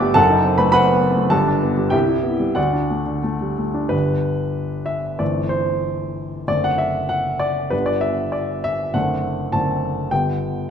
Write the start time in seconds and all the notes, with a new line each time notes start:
Already playing: G1 G2 G3 A3 B3 D4 D5 E5 F#5 B5 D6 E6 F#6
0.02 G4
0.14 F#1 F#2 A4 F#5 A5
0.30 D#4
0.45 C4
0.58 A3 B4 B5
0.72 C4 B4 F#5 B5
0.88 B3
1.01 C4
1.16 A3
1.30 G1 G2 A4 A5
1.48 D4
1.63 B3
1.77 G3
1.90 C2 G4 E5 G5
2.09 E4
2.23 B3
2.40 G3
2.55 D2 F#4 D5 F#5
2.73 D4
2.90 A3
3.06 D3
3.23 A3
3.41 G3
3.58 A3
3.74 D4
3.89 G1 D3 G3 D4 B4
4.86 E5
5.18 G1 E3 A3 C4 D5
5.49 C5
6.48 F#1 D3 A3 C4 D5
6.64 F#5
6.78 E5
7.09 F#5
7.40 D5
7.70 G1 D3 G3 B3 B4
7.86 D5
8.01 E5
8.32 D5
8.64 E5
8.94 F#1 D3 A3 C4 F#5
9.52 F#1 D3 A3 C4 A5
10.11 G1 D3 G3 B3 G5